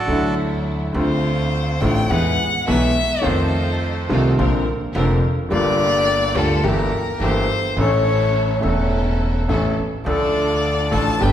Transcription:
0.00 0.35 F#4 medium
0.00 0.35 A4 medium
0.00 0.35 D5 medium
0.06 0.91 D2 medium
0.06 0.07 D3 medium
0.06 0.91 D3 medium
0.06 0.91 F#3 medium
0.06 0.92 A3 medium
0.06 0.91 D4 medium
0.06 0.91 E4 medium
0.11 0.93 E4 medium
0.93 1.77 D2 medium
0.93 0.94 D3 medium
0.93 1.77 D3 medium
0.93 1.77 A3 medium
0.93 1.77 C4 medium
0.93 1.78 C4 medium
0.93 1.77 D4 medium
0.93 1.77 F4 medium
0.93 1.82 C5 medium
0.97 1.79 F4 medium
1.80 2.06 A1 medium
1.80 2.06 A2 medium
1.80 2.06 D3 medium
1.80 2.06 A3 medium
1.80 2.06 C4 medium
1.80 2.06 D4 medium
1.80 2.06 F4 medium
1.80 2.11 G5 medium
2.09 2.35 E2 medium
2.09 2.35 E3 medium
2.09 2.35 G#3 medium
2.09 2.35 B3 medium
2.09 2.35 E4 medium
2.09 2.35 G#4 medium
2.09 2.67 F#5 medium
2.67 2.92 B1 medium
2.67 2.92 B2 medium
2.67 2.92 E3 medium
2.67 2.92 G#3 medium
2.67 2.92 B3 medium
2.67 2.92 E4 medium
2.67 2.92 G#4 medium
2.67 3.26 E5 medium
3.21 4.05 F2 medium
3.21 4.04 D#3 medium
3.21 4.05 F3 medium
3.21 4.04 A3 medium
3.21 4.05 C4 medium
3.21 4.06 D#4 medium
3.21 4.06 F4 medium
3.21 4.06 A4 medium
3.21 4.10 C5 medium
3.26 4.06 F2 medium
4.09 4.34 C2 medium
4.09 4.34 C3 medium
4.09 4.34 D#3 medium
4.09 4.34 A3 medium
4.09 4.34 C4 medium
4.09 4.34 D#4 medium
4.09 4.34 F4 medium
4.09 4.34 A4 medium
4.38 4.63 A#1 medium
4.38 4.62 A#2 medium
4.38 4.62 D3 medium
4.38 4.63 A#3 medium
4.38 4.62 C4 medium
4.38 4.63 C4 medium
4.38 4.62 D4 medium
4.38 4.63 F4 medium
4.38 4.63 A#4 medium
4.95 5.19 F1 medium
4.95 5.20 F2 medium
4.95 5.19 D3 medium
4.95 5.20 A#3 medium
4.95 5.19 C4 medium
4.95 5.20 C4 medium
4.95 5.19 D4 medium
4.95 5.19 F4 medium
4.95 5.19 A#4 medium
5.49 6.32 G1 medium
5.49 6.32 G2 medium
5.49 6.31 D3 medium
5.49 6.31 G3 medium
5.49 6.32 A#3 medium
5.49 6.32 F4 medium
5.49 6.32 G4 medium
5.49 6.38 D5 loud
6.35 6.60 D2 medium
6.35 6.60 D3 medium
6.35 6.60 G3 medium
6.35 6.60 A#3 medium
6.35 6.60 F4 medium
6.35 6.60 G4 medium
6.35 6.66 A4 medium
6.63 6.88 G1 medium
6.63 6.88 G2 medium
6.63 6.88 E3 medium
6.63 6.88 G3 medium
6.63 6.88 A#3 medium
6.63 6.88 E4 medium
6.63 6.88 G4 medium
6.63 7.24 A#4 medium
7.20 7.44 G1 medium
7.20 7.45 G1 medium
7.20 7.45 G2 medium
7.20 7.45 E3 medium
7.20 7.45 G3 medium
7.20 7.45 A#3 medium
7.20 7.45 E4 medium
7.20 7.45 G4 medium
7.20 7.78 C5 medium
7.76 8.58 A1 medium
7.76 8.59 A1 medium
7.76 8.59 A2 medium
7.76 8.58 E3 medium
7.76 8.58 A3 medium
7.76 8.59 C#4 medium
7.76 8.59 E4 medium
7.76 8.59 A4 medium
7.76 8.60 A4 medium
7.81 8.61 C#5 medium
8.60 9.44 E1 medium
8.60 9.45 E1 medium
8.60 9.44 E2 medium
8.60 9.43 E3 medium
8.60 9.44 A3 medium
8.60 9.44 C#4 medium
8.60 9.45 E4 medium
8.60 9.45 A4 medium
9.49 9.73 A1 medium
9.49 9.73 A2 medium
9.49 9.73 E3 medium
9.49 9.73 A3 medium
9.49 9.73 C#4 medium
9.49 9.73 E4 medium
9.49 9.73 A4 medium
9.49 9.74 A4 medium
10.05 10.89 D2 medium
10.05 10.89 D3 medium
10.05 10.88 F3 medium
10.05 10.89 A3 medium
10.05 10.89 D4 medium
10.05 10.89 F4 medium
10.05 10.89 A4 medium
10.05 10.94 D5 medium
10.09 10.90 A4 medium
10.91 11.16 A1 medium
10.91 11.17 A1 medium
10.91 11.16 A2 medium
10.91 11.16 F3 medium
10.91 11.16 A3 medium
10.91 11.16 D4 medium
10.91 11.16 F4 medium
10.91 11.16 A4 medium
10.91 11.17 A4 medium
10.91 11.24 A5 medium
11.20 11.32 G1 medium
11.20 11.32 G2 medium
11.20 11.32 D3 medium
11.20 11.32 G3 medium
11.20 11.32 B3 medium
11.20 11.32 D4 medium
11.20 11.32 G4 medium
11.20 11.32 B4 medium
11.20 11.32 G5 medium

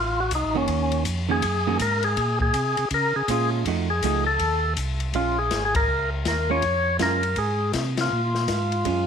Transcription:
0.00 0.31 A1 medium
0.00 0.20 F4 medium
0.20 0.33 F#4 loud
0.31 0.44 C2 medium
0.31 kick soft
0.31 hi-hat pedal medium
0.31 ride medium
0.35 0.57 D#4 medium
0.44 0.57 A1 medium
0.55 0.68 F1 medium
0.55 1.03 D#3 medium
0.55 1.04 A#3 medium
0.55 1.04 C#4 medium
0.55 1.04 F#4 medium
0.68 1.05 D#2 medium
0.68 kick soft
0.68 ride medium
0.92 ride soft
1.05 1.42 F2 loud
1.05 kick soft
1.05 hi-hat pedal medium
1.05 ride medium
1.29 1.42 D#3 medium
1.29 1.42 A#3 medium
1.29 1.42 C#4 medium
1.29 1.42 F#4 medium
1.29 1.78 G#4 medium
1.42 1.79 F#2 medium
1.42 kick soft
1.42 ride medium
1.67 1.79 D#3 medium
1.67 1.79 A#3 medium
1.67 1.80 C#4 medium
1.67 1.80 F#4 medium
1.79 2.16 G#2 medium
1.79 2.04 A#4 medium
1.79 kick soft
1.79 hi-hat pedal medium
1.79 ride medium
2.03 2.39 G#4 medium
2.03 ride soft
2.17 2.53 A#2 medium
2.17 kick soft
2.17 ride medium
2.40 2.89 G#4 medium
2.40 kick medium
2.54 2.76 C3 medium
2.54 kick soft
2.54 hi-hat pedal soft
2.54 ride medium
2.77 2.85 C3 soft
2.77 ride medium
2.91 3.13 C#3 medium
2.91 3.16 A#4 loud
2.91 kick soft
2.91 ride medium
3.16 3.23 C#3 soft
3.16 3.50 G#4 loud
3.28 3.64 A#2 medium
3.28 3.66 G#3 medium
3.28 3.67 C#4 medium
3.28 3.67 F4 medium
3.28 kick soft
3.28 hi-hat pedal medium
3.28 ride medium
3.65 4.01 F2 medium
3.65 3.88 F3 medium
3.65 3.88 A3 medium
3.65 3.88 D#4 medium
3.65 3.88 F#4 medium
3.65 kick soft
3.65 ride medium
3.90 4.24 G#4 medium
4.03 4.39 C#2 medium
4.03 4.25 F3 medium
4.03 4.25 A3 medium
4.03 4.25 D#4 medium
4.03 4.25 F#4 medium
4.03 kick soft
4.03 hi-hat pedal medium
4.03 ride medium
4.27 4.74 A4 medium
4.39 4.76 D#2 medium
4.39 kick soft
4.39 ride medium
4.77 5.13 C2 loud
4.77 kick soft
4.77 hi-hat pedal medium
4.77 ride medium
5.00 ride soft
5.13 5.50 A#1 medium
5.13 5.36 G#3 medium
5.13 5.36 C#4 medium
5.13 5.39 F4 medium
5.13 5.36 F4 medium
5.13 kick soft
5.13 ride medium
5.38 5.64 G#4 loud
5.51 5.87 G#1 medium
5.51 kick soft
5.51 snare medium
5.51 hi-hat pedal medium
5.51 ride medium
5.65 5.75 G#4 medium
5.75 6.10 A#4 loud
5.75 kick medium
5.75 ride medium
5.88 6.24 C#2 medium
6.25 6.62 D#2 medium
6.25 6.51 A#4 medium
6.25 kick soft
6.25 snare medium
6.25 hi-hat pedal medium
6.25 ride medium
6.50 6.62 G#3 medium
6.50 6.62 C#4 medium
6.50 6.62 F4 medium
6.50 6.97 C#5 loud
6.62 6.99 F2 medium
6.62 kick soft
6.62 ride medium
6.99 7.36 F#2 medium
6.99 7.21 G#3 soft
6.99 7.21 C#4 medium
6.99 7.21 F4 medium
6.99 7.39 A#4 medium
6.99 kick soft
6.99 snare medium
6.99 hi-hat pedal medium
6.99 ride medium
7.23 ride soft
7.36 7.73 G#2 medium
7.36 7.72 G#4 medium
7.36 kick soft
7.36 ride medium
7.73 8.10 C3 medium
7.73 kick soft
7.73 snare medium
7.73 hi-hat pedal medium
7.73 ride medium
7.97 9.07 F4 medium
7.97 snare medium
7.97 ride medium
8.12 8.48 A#2 medium
8.35 snare soft
8.48 8.84 G#2 loud
8.48 kick soft
8.48 snare medium
8.48 hi-hat pedal medium
8.48 ride medium
8.72 ride soft
8.85 9.07 F#2 medium
8.85 9.07 G#3 soft
8.85 9.07 C#4 medium
8.85 9.07 F4 medium
8.85 kick soft
8.85 ride medium

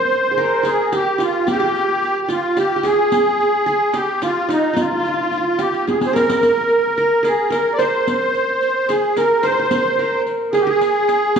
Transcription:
0.00 0.21 G#4 medium
0.00 0.37 A#4 medium
0.00 0.60 C5 medium
0.00 0.70 C5 medium
0.12 riq soft
0.31 0.63 G#4 medium
0.38 1.51 A#4 medium
0.38 riq soft
0.63 0.98 G#4 medium
0.63 riq soft
0.68 0.94 G#4 medium
0.92 1.46 G4 medium
0.92 1.22 G4 medium
0.92 riq soft
1.18 2.28 F4 medium
1.18 riq soft
1.23 1.47 F4 medium
1.47 1.59 G4 medium
1.47 2.21 G4 medium
1.47 riq medium
1.54 1.66 G#4 medium
1.60 2.56 G4 medium
1.75 riq soft
2.02 riq soft
2.22 2.29 G4 medium
2.28 3.63 F4 medium
2.28 2.59 F4 medium
2.28 riq soft
2.57 2.76 G4 medium
2.57 2.86 G4 medium
2.57 riq soft
2.76 2.89 G4 medium
2.83 3.66 G#4 medium
2.83 3.98 G#4 medium
2.83 riq soft
3.12 riq medium
3.40 riq soft
3.66 4.00 G#4 medium
3.66 riq soft
3.94 5.19 G4 medium
3.94 4.23 G4 medium
3.94 riq soft
4.22 4.73 F4 medium
4.22 4.51 F4 medium
4.22 riq soft
4.49 5.93 D#4 medium
4.49 4.79 D#4 medium
4.49 riq soft
4.74 4.83 F4 medium
4.74 riq medium
4.80 5.63 F4 medium
4.80 4.91 F4 soft
4.92 5.00 F4 medium
5.00 5.08 F4 soft
5.05 5.13 F4 soft
5.05 riq soft
5.14 5.23 F4 soft
5.23 5.31 F4 medium
5.31 5.37 F4 soft
5.31 riq soft
5.37 5.43 F4 medium
5.43 6.78 F4 medium
5.58 5.93 G4 medium
5.58 5.86 G4 medium
5.58 riq soft
5.74 riq soft
5.87 7.09 G#4 medium
5.87 6.09 G#4 medium
5.87 riq medium
6.01 riq medium
6.06 6.14 C5 medium
6.13 6.97 A#4 medium
6.13 7.28 A#4 medium
6.13 riq medium
6.29 riq medium
6.43 riq medium
6.69 riq soft
6.97 7.50 A#4 medium
6.97 riq soft
7.23 8.44 G#4 medium
7.23 7.50 G#4 medium
7.23 riq soft
7.50 8.63 A#4 medium
7.50 7.73 A#4 medium
7.50 riq medium
7.73 7.80 D5 medium
7.78 8.92 C5 medium
7.78 8.85 C5 medium
7.78 riq soft
8.07 riq medium
8.35 riq soft
8.62 riq soft
8.89 9.18 G#4 medium
8.89 10.11 G#4 medium
8.89 riq soft
9.17 9.99 A#4 medium
9.17 9.46 A#4 medium
9.17 riq soft
9.43 9.52 C5 medium
9.43 10.23 C5 medium
9.43 riq soft
9.52 9.59 C5 medium
9.60 9.66 C5 medium
9.66 9.73 C5 medium
9.71 9.82 C5 medium
9.71 riq medium
9.83 10.88 C5 medium
9.99 11.12 A#4 medium
9.99 riq soft
10.27 riq soft
10.53 10.61 G#4 loud
10.53 10.66 G#4 medium
10.53 riq soft
10.61 10.68 G4 medium
10.67 11.40 G#4 medium
10.67 11.39 G#4 loud
10.81 riq soft
11.09 riq soft
11.36 11.40 G4 medium
11.36 riq medium

